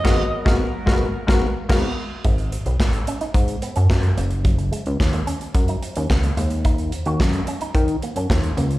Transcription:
<<
  \new Staff \with { instrumentName = "Alto saxophone" } { \time 4/4 \key gis \minor \tempo 4 = 109 dis''4 r2. | r1 | r1 | r1 | }
  \new Staff \with { instrumentName = "Clean electric guitar" } { \time 4/4 \key gis \minor r1 | gis16 r8 b16 r8 cis'16 dis'16 r8 b16 cis'16 r8 ais16 r16 | fis16 r16 gis16 r8 ais16 cis'16 r8 dis'16 r16 cis'16 r16 ais16 gis16 r16 | dis'16 r8 fis'16 r8 cis'16 dis'16 r8 ais16 cis'16 r8 ais16 r16 | }
  \new Staff \with { instrumentName = "Analog polysynth" } { \time 4/4 \key gis \minor <gis ais b fis' ais'>8 r16 <gis ais b fis' ais'>8 r16 <gis ais b fis' ais'>8 r16 <gis ais b fis' ais'>8 r16 <gis ais b fis' ais'>8 r8 | r1 | r1 | r1 | }
  \new Staff \with { instrumentName = "Analog synth pad" } { \time 4/4 \key gis \minor <fis b ais'>1 | r1 | r1 | r1 | }
  \new Staff \with { instrumentName = "Analog synth bass" } { \clef bass \time 4/4 \key gis \minor gis,,8 r16 gis,,8 r16 gis,,8 r16 gis,,8 r16 gis,,8 r8 | gis,,8. b,,16 gis,,8 r8 gis,8 r16 fis,16 fis,8 fis,,8~ | fis,,8. cis,16 dis,8 r8 fis,8 r16 dis,16 cis,8 dis,8~ | dis,8. dis,16 fis,8 r8 dis8 r16 fis,16 dis,8 cis,8 | }
  \new DrumStaff \with { instrumentName = "Drums" } \drummode { \time 4/4 <cymc bd sn>8. <bd sn>16 r8 <bd sn>8 r16 <bd sn>8. <cymc bd sn>4 | <hh bd>16 hh16 hh16 hh16 <hc bd sn>16 hh16 hh16 hh16 <hh bd>16 hh16 hh16 hh16 <hc bd sn>16 hh16 hh16 hh16 | <hh bd>16 hh16 hh16 hh16 <hc bd sn>16 hh16 hh16 hh16 <hh bd>16 hh16 hh16 hh16 <hc bd sn>16 hh16 hh16 hh16 | <hh bd>16 hh16 hh16 hh16 <hc bd sn>16 hh16 hh16 hh16 <hh bd>16 hh16 hh16 hh16 <hc bd sn>16 hh16 hh16 hh16 | }
>>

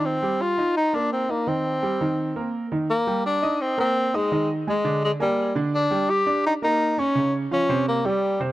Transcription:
<<
  \new Staff \with { instrumentName = "Grand piano" } { \time 4/4 \key c \minor \tempo 4 = 169 <ees ees'>8 <g g'>4 <ees' ees''>4 <bes bes'>4 <ees' ees''>8 | <ees ees'>4 <g g'>8 <ees ees'>4 <bes bes'>4 <ees ees'>8 | r8 <g g' g''>4 <ees' ees'' ees'''>4 <bes bes' bes''>4 <ees' ees'' ees'''>8 | <ees ees' ees''>4 <aes aes' aes''>8 <d d' d''>4 <bes bes' aes''>4 <d d' d''>8~ |
<d d' d''>8 <g g' g''>4 <d' d'' d'''>4 <bes bes' bes''>4 <des' des'' des'''>8 | <des des' des''>4 <f f' f''>8 <c c' c''>4 <g g' g''>4 <c c' c''>8 | }
  \new Staff \with { instrumentName = "Tenor saxophone" } { \time 4/4 \key c \minor c'4 f'4 ees'8 d'8 c'8 bes8 | c'2. r4 | bes4 d'4 c'8 c'4 aes8~ | aes8 r8 aes4 aes8 g4 r8 |
d'4 g'4 ees'8 ees'4 des'8~ | des'8 r8 des'4 bes8 g4 r8 | }
>>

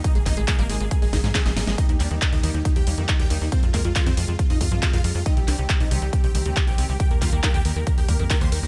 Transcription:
<<
  \new Staff \with { instrumentName = "Supersaw synth" } { \time 4/4 \key ees \major \tempo 4 = 138 <ees' ees''>16 aes'16 <ees' ees''>16 aes'16 aes'16 <bes bes'>16 aes'16 aes'16 aes'16 <aes aes'>16 aes'16 aes'16 aes'16 <aes aes'>16 aes'16 aes'16 | <ees' ees''>16 ees'16 <d' d''>16 ees'16 ees'16 <ees' ees''>16 ees'16 ees'16 ees'16 <g' g''>16 ees'16 ees'16 ees'16 <g' g''>16 ees'16 ees'16 | <c' c''>16 f'16 <bes bes'>16 f'16 f'16 <c' c''>16 f'16 f'16 f'16 <ees' ees''>16 f'16 f'16 f'16 <f' f''>16 f'16 f'16 | <ees' ees''>16 g'16 <d' d''>16 g'16 r16 <ees' ees''>16 g'16 g'16 g'16 <g' g''>16 g'16 g'16 g'16 <g' g''>16 g'16 g'16 |
<g' g''>16 bes'16 <f' f''>16 bes'16 bes'16 <g' g''>16 bes'16 bes'16 bes'16 <g' g''>16 bes'16 bes'16 bes'16 <c'' c'''>16 bes'16 bes'16 | }
  \new Staff \with { instrumentName = "String section" } { \clef bass \time 4/4 \key ees \major <c aes bes ees'>8 <c aes bes ees'>16 <c aes bes ees'>16 <c aes bes ees'>8 <c aes bes ees'>8 <c aes bes ees'>8 <c aes bes ees'>16 <c aes bes ees'>8 <c aes bes ees'>16 <c aes bes ees'>8 | <ees g bes g'>8 <ees g bes g'>16 <ees g bes g'>16 <ees g bes g'>8 <ees g bes g'>8 <ees g bes g'>8 <ees g bes g'>16 <ees g bes g'>8 <ees g bes g'>16 <ees g bes g'>8 | <c f aes f'>8 <c f aes f'>16 <c f aes f'>16 <c f aes f'>8 <c f aes f'>8 <c f aes f'>8 <c f aes f'>16 <c f aes f'>8 <c f aes f'>16 <c f aes f'>8 | <ees g c' g'>8 <ees g c' g'>16 <ees g c' g'>16 <ees g c' g'>8 <ees g c' g'>8 <ees g c' g'>8 <ees g c' g'>16 <ees g c' g'>8 <ees g c' g'>16 <ees g c' g'>8 |
<ees g bes g'>8 <ees g bes g'>16 <ees g bes g'>16 <ees g bes g'>8 <ees g bes g'>8 <ees g bes g'>8 <ees g bes g'>16 <ees g bes g'>8 <ees g bes g'>16 <ees g bes g'>8 | }
  \new Staff \with { instrumentName = "Acid bass" } { \clef bass \time 4/4 \key ees \major aes16 aes16 c'16 aes16 aes16 g16 aes16 aes16 aes16 aes16 ees'16 aes16 c'16 c'16 aes,16 aes16 | ees16 ees16 g16 ees16 ees'16 d16 ees16 ees16 ees16 ees16 g16 ees16 ees'16 d16 ees16 ees16 | f16 f16 aes16 f16 f'16 ees16 f16 f16 f16 f16 aes16 f16 f'16 ees16 f16 f16 | c16 c16 ees16 c16 c'16 bes,16 c16 c16 c16 c16 ees16 c16 c'16 bes,16 c16 c16 |
ees16 ees16 g16 ees16 ees'16 d16 ees16 ees16 ees16 ees16 g16 ees16 ees'16 d16 ees16 ees16 | }
  \new Staff \with { instrumentName = "Analog synth bass" } { \clef bass \time 4/4 \key ees \major r16 aes,,16 aes,,16 aes,,16 r16 aes,,16 aes,,16 aes,,16 r16 aes,,16 aes,,16 aes,16 r16 aes,,16 aes,,16 aes,,16 | r16 ees,16 ees,16 ees,16 r16 ees,16 ees,16 ees,16 r16 ees,16 ees,16 f,16 r16 ees,16 ees,16 ees,16 | r16 f,16 f,16 f,16 r16 f,16 f,16 f,16 r16 f,16 f,16 g,16 r16 f,16 f,16 f,16 | r16 c,16 c,16 c,16 r16 c,16 c,16 c,16 r16 c,16 c,16 d,16 r16 c,16 c,16 c,16 |
r16 ees,16 ees,16 ees,16 r16 ees,16 ees,16 ees,16 r16 ees,16 ees,16 f,16 r16 ees,16 ees,16 ees,16 | }
  \new DrumStaff \with { instrumentName = "Drums" } \drummode { \time 4/4 <hh bd>16 hh16 <hc hho bd>16 hh16 <hc hh bd>16 hh16 hho16 hh16 <hh bd>16 hho16 <hho bd sn>16 <hh sn>16 <hc hh bd sn>16 <hh sn>16 <hho sn>16 <hh sn>16 | <hh bd>16 hh16 <hc hho>16 hh16 <hc hh bd>16 hh16 hho16 hh16 <hh bd>16 hh16 hho16 hh16 <hc hh bd>16 hh16 hho8 | <hh bd>16 hh16 <hc hho bd>16 hh16 <hc hh bd>16 hh16 hho16 hh16 <hh bd>16 hho16 <hho bd>16 hh16 <hc hh bd>16 hh16 hho8 | <hh bd>16 hh16 <hc hho>16 hh16 <hc hh bd>16 hh16 hho16 hh16 <hh bd>16 hh16 hho16 hh16 <hc hh bd>16 hh16 hho8 |
<hh bd>16 hh16 <hc hho bd>16 hh16 <hc hh bd>16 hh16 hho16 hh16 <hh bd>16 hho16 <hho bd>16 hh16 <hc hh bd>16 hh16 hho8 | }
>>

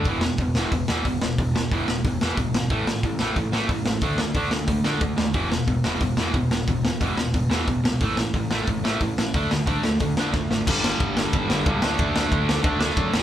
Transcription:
<<
  \new Staff \with { instrumentName = "Distorted electric guitar" } { \clef bass \time 4/4 \key d \lydian \tempo 4 = 181 <e, b, e>8 <e, b,>8 <e, b,>8 <e, b, e>8 <e, b,>8 <e, b, e>8 <e, b,>8 <e, b,>8 | <e, b,>8 <e, b,>8 <e, b, e>8 <e, b,>8 <e, b,>8 <e, b, e>8 <e, b,>8 <e, b,>8 | <a, e a>8 <a, e>8 <a, e>8 <a, e a>8 <a, e>8 <a, e a>8 <a, e>8 <a, e>8 | <d a d'>8 <d a>8 <d a d'>8 <d a>8 <d a>8 <d a d'>8 <d a>8 <d a>8 |
<e, b, e>8 <e, b,>8 <e, b,>8 <e, b, e>8 <e, b,>8 <e, b, e>8 <e, b,>8 <e, b,>8 | <e, b,>8 <e, b,>8 <e, b, e>8 <e, b,>8 <e, b,>8 <e, b, e>8 <e, b,>8 <e, b,>8 | <a, e a>8 <a, e>8 <a, e>8 <a, e a>8 <a, e>8 <a, e a>8 <a, e>8 <a, e>8 | <d a d'>8 <d a>8 <d a d'>8 <d a>8 <d a>8 <d a d'>8 <d a>8 <d a>8 |
<g, d g>2~ <g, d g>8 <g, d g>8 <g, d g>8 <d a d'>8~ | <d a d'>2 <d a d'>8 <d a d'>4 <e, b, e>8 | }
  \new Staff \with { instrumentName = "Picked electric bass" } { \clef bass \time 4/4 \key d \lydian e,,4 e,,8 e,,8 e,,8 e,8 e,,8 e,,8 | e,,4 e,,8 e,,8 e,,8 e,8 e,,8 gis,,8 | a,,4 a,,8 a,,8 a,,8 a,8 a,,8 a,,8 | d,4 d,8 d,8 d,8 d8 d,8 dis,8 |
e,,4 e,,8 e,,8 e,,8 e,8 e,,8 e,,8 | e,,4 e,,8 e,,8 e,,8 e,8 e,,8 b,,8 | a,,4 a,,8 a,,8 a,,8 a,8 a,,8 a,,8 | d,4 d,8 d,8 d,8 d8 d,8 gis,,8 |
g,,8 g,,8 g,,4 g,,8 g,,8 cis,8 d,8 | d,4 d,4 d,4 fis,8 e,,8 | }
  \new DrumStaff \with { instrumentName = "Drums" } \drummode { \time 4/4 <hho bd>8 sn8 <hho bd>8 sn8 <hho bd>8 sn8 <hho bd>8 sn8 | <hho bd>8 sn8 <hho bd>8 sn8 <hho bd>8 sn8 <hho bd>8 sn8 | <hho bd>8 sn8 <hho bd>8 sn8 <hho bd>8 sn8 <hho bd>8 sn8 | <hho bd>8 sn8 <hho bd>8 sn8 <hho bd>8 sn8 <hho bd>8 sn8 |
<hho bd>8 sn8 <hho bd>8 sn8 <hho bd>8 sn8 <hho bd>8 sn8 | <hho bd>8 sn8 <hho bd>8 sn8 <hho bd>8 sn8 <hho bd>8 sn8 | <hho bd>8 sn8 <hho bd>8 sn8 <hho bd>8 sn8 <hho bd>8 sn8 | <hho bd>8 sn8 <hho bd>8 sn8 <hho bd>8 sn8 <bd sn>8 sn8 |
<cymc bd>8 sn8 <bd cymr>8 sn8 <bd cymr>8 sn8 <bd cymr>8 sn8 | <bd cymr>8 sn8 <bd cymr>8 sn8 <bd cymr>8 sn8 <bd cymr>8 sn8 | }
>>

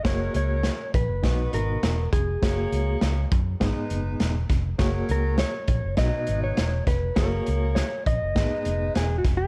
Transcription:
<<
  \new Staff \with { instrumentName = "Clean electric guitar" } { \time 4/4 \key fis \major \tempo 4 = 101 cis''8 cis''4 b'4 ais'4 gis'8~ | gis'4 r2. | r8 ais'8 cis''4 dis''8. cis''8. b'8 | ais'4 cis''8 dis''4. \tuplet 3/2 { gis'8 fis'8 gis'8 } | }
  \new Staff \with { instrumentName = "Reed electric piano" } { \time 4/4 \key fis \major <ais fis' gis' cis''>4~ <ais fis' gis' cis''>16 r8. <b dis' fis' dis''>4~ <b dis' fis' dis''>16 r8. | <ais fis' gis' cis''>4~ <ais fis' gis' cis''>16 r8. <b dis' gis' dis''>4~ <b dis' gis' dis''>16 r8. | <ais fis' gis' cis''>4~ <ais fis' gis' cis''>16 r8. <b dis' fis' dis''>4~ <b dis' fis' dis''>16 r8. | <ais fis' gis' bis' cis''>4~ <ais fis' gis' bis' cis''>16 r8. <ais b dis' gis' dis''>4~ <ais b dis' gis' dis''>16 r8. | }
  \new Staff \with { instrumentName = "Reed electric piano" } { \clef bass \time 4/4 \key fis \major r2 b,4. r8 | r2 gis,4. r8 | r2 b,4. r8 | r2 gis,4. r8 | }
  \new Staff \with { instrumentName = "Saxophone section" } { \time 4/4 \key fis \major <fis cis' ais'>4. r8 <b fis' dis''>4. r8 | <ais gis' cis''>4. r8 <gis dis' b'>4. r8 | <fis cis' ais'>4. r8 <fis dis' b'>4. r8 | <ais gis' cis''>4. r8 <gis dis' b'>4. r8 | }
  \new Staff \with { instrumentName = "Fingered electric bass" } { \clef bass \time 4/4 \key fis \major fis,,8 cis,8. r16 ais,,16 fis,,16 b,,8 gis,,8 e,,8 eis,,8 | fis,,8 cis,8 cis,8 fis,8 gis,,16 r16 fis,,8 e,,8 eis,,8 | fis,,8 cis,8. r16 ais,,16 fis,,16 b,,16 r16 gis,,8 e,,8 eis,,8 | fis,,8 cis,8. r16 ais,,16 fis,,16 gis,,16 r16 eis,,8 e,,8 eis,,8 | }
  \new DrumStaff \with { instrumentName = "Drums" } \drummode { \time 4/4 <hh bd sn>8 hh8 <hh sn>8 <hh bd>8 <hh bd sn>8 hh8 <hh sn>8 <hh bd>8 | <hh bd sn>8 hh8 <hh sn>8 <hh bd>8 <hh bd sn>8 hh8 <hh sn>8 <hh bd sn>8 | <hh bd sn>8 hh8 <hh sn>8 <hh bd>8 <hh bd sn>8 hh8 <hh sn>8 <hh bd sn>8 | <hh bd sn>8 hh8 <hh sn>8 <hh bd>8 <hh bd sn>8 hh8 <hh sn>8 <hh bd sn>8 | }
>>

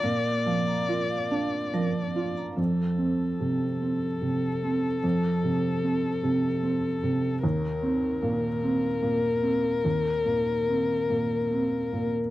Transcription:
<<
  \new Staff \with { instrumentName = "Vibraphone" } { \time 3/4 \key f \mixolydian \tempo 4 = 73 bes'16 r16 f''16 bes''16 bes'16 f''16 f''16 r16 bes'16 r16 f''16 bes''16 | r2. | r2. | r2. |
r2. | }
  \new Staff \with { instrumentName = "Violin" } { \time 3/4 \key f \mixolydian d''2~ d''8. r16 | a'2.~ | a'2. | bes'2.~ |
bes'2~ bes'8. r16 | }
  \new Staff \with { instrumentName = "Felt piano" } { \clef bass \time 3/4 \key f \mixolydian <bes, f'>8 f8 f'8 d'8 f8 f'8 | f,8 c'8 c8 c'8 c8 c'8 | f,8 c8 c'8 c8 c'8 c8 | ees,8 c'8 bes,8 c'8 bes,8 c'8 |
ees,8 bes,8 c'8 bes,8 c'8 bes,8 | }
>>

